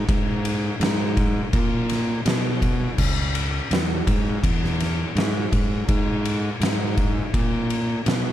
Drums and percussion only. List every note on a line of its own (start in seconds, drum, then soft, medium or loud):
0.09 kick loud
0.09 ride loud
0.45 ride medium
0.81 snare loud
0.81 ride loud
1.17 kick loud
1.17 ride medium
1.53 kick loud
1.53 ride loud
1.89 snare soft
1.89 ride medium
2.26 snare loud
2.26 ride loud
2.62 kick medium
2.62 ride medium
2.98 kick loud
2.98 crash loud
3.35 ride medium
3.71 snare loud
3.71 ride loud
4.07 kick loud
4.07 ride medium
4.44 kick loud
4.44 ride loud
4.64 snare soft
4.80 snare soft
4.80 ride medium
5.17 snare loud
5.17 ride medium
5.53 kick medium
5.53 ride medium
5.89 kick loud
5.89 ride loud
6.25 ride medium
6.61 snare loud
6.61 ride loud
6.97 kick loud
6.97 ride medium
7.34 kick loud
7.34 ride loud
7.70 ride medium
8.06 snare loud
8.06 ride loud